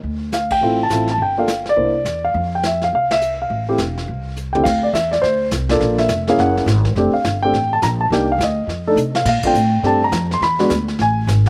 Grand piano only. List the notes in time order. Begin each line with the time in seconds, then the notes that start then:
0.34 F5
0.52 G5
0.63 A3 C4 E4 F4
0.83 A5
0.92 A3 C4 E4 F4
1.11 A5
1.22 G5
1.38 A#3 D4 F4 A4 F5
1.69 D5
1.77 A#3 D4 E4 C5
2.25 F5
2.55 G5
2.66 E5
2.84 F5
2.95 F5
3.12 E5
3.42 F5
3.68 A3 C4 E4 G4
4.53 D3 A3 C4 E4 G4 G5
4.64 F5
4.83 D5
4.94 E5
5.11 D5
5.22 C5
5.70 A#3 D4 F4 A4 D5
5.99 E5
6.28 A#3 C#4 E4 G#4 F5
6.40 F#5
6.97 A3 C4 D4 G4
7.14 F5
7.43 A3 C4 D4 G4 G5
7.73 A5
7.83 A#5
8.01 A5
8.12 A#3 D4 D#4 G4 G5
8.32 F5
8.43 D#5
8.87 A3 D4 D#4 A4
9.16 F5
9.29 F5
9.44 A3 C4 D4 F4 G5
9.83 A3 C4 D4 G4 A5
10.04 A#5
10.34 C6
10.43 B5
10.59 G#3 B3 D4 F#4
11.02 G#5